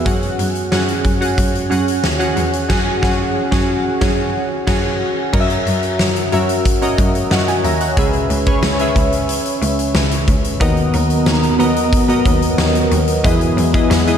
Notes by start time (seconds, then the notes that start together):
0.05 F#2 C#4 F#4 G#4 F#5, kick, closed hi-hat
0.23 closed hi-hat
0.39 F#2, closed hi-hat
0.55 closed hi-hat
0.72 F#2 C#4 F#4 G#4 F#5, snare
0.88 closed hi-hat
1.05 F#2, kick, closed hi-hat
1.21 C#4 F#4 G#4 F#5, closed hi-hat
1.38 F#2, kick, closed hi-hat
1.55 closed hi-hat
1.70 F#2 C#4 F#4 G#4 F#5, closed hi-hat
1.88 closed hi-hat
2.04 D#2, snare
2.19 C#4 F#4 G#4 F#5, closed hi-hat
2.37 E2, closed hi-hat
2.53 closed hi-hat
2.69 F#2 C#4 F#4 G#4 F#5, kick, snare, crash
3.02 F#2 C#4 F#4 G#4 F#5, kick, snare
3.51 F#2 C#4 F#4 G#4, kick, snare
4.01 F#2 C#4 F#4 G#4, kick, snare
4.67 F#2 C#4 F#4 G#4, kick, snare, crash
5.33 F#2 C#4 F#4 A#4 D#5, kick, crash
5.40 E5
5.50 closed hi-hat
5.66 F#2, closed hi-hat
5.83 closed hi-hat
5.99 F#2, snare
6.16 closed hi-hat
6.32 F#2 C#4 F#4 A#4 E5, closed hi-hat
6.49 closed hi-hat
6.65 kick, closed hi-hat
6.82 C#4 F#4 A#4 D#5, closed hi-hat
6.98 F#2, kick, closed hi-hat
7.15 closed hi-hat
7.31 F#2 C#5 F#5, snare
7.48 D#5 G#5, closed hi-hat
7.64 D#2 E5 A#5, closed hi-hat
7.80 C#5 F#5, closed hi-hat
7.97 C#2 C#3 C#4 G#4 B4 E5, kick, closed hi-hat
8.13 closed hi-hat
8.30 C#2, closed hi-hat
8.46 C#4 G#4 B4 C#5, kick, closed hi-hat
8.63 C#2, snare
8.79 C#4 G#4 B4 E5, closed hi-hat
8.96 C#2, kick, closed hi-hat
9.12 closed hi-hat
9.29 closed hi-hat
9.45 closed hi-hat
9.62 C#2, closed hi-hat
9.79 closed hi-hat
9.95 C#2, snare
10.11 closed hi-hat
10.27 C#2, kick, closed hi-hat
10.44 closed hi-hat
10.60 D#2 D#3 F#3 B3 F#4 A#4 D#5, kick, closed hi-hat
10.77 closed hi-hat
10.93 D#2, closed hi-hat
11.10 closed hi-hat
11.26 D#2, snare
11.43 closed hi-hat
11.59 D#2 B3 F#4 A#4 D#5, closed hi-hat
11.76 closed hi-hat
11.93 kick, closed hi-hat
12.08 B3 F#4 A#4 D#5, closed hi-hat
12.26 D#2, kick, closed hi-hat
12.42 closed hi-hat
12.58 D#2, snare
12.75 closed hi-hat
12.91 D#2, closed hi-hat
13.07 closed hi-hat
13.24 E2 E3 G#3 B3 E4 G#4 D#5, kick, closed hi-hat
13.41 closed hi-hat
13.58 E2, closed hi-hat
13.74 B3 E4 G#4 D#5, kick, closed hi-hat
13.90 E2, snare, tambourine
14.07 B3 E4 G#4 D#5, closed hi-hat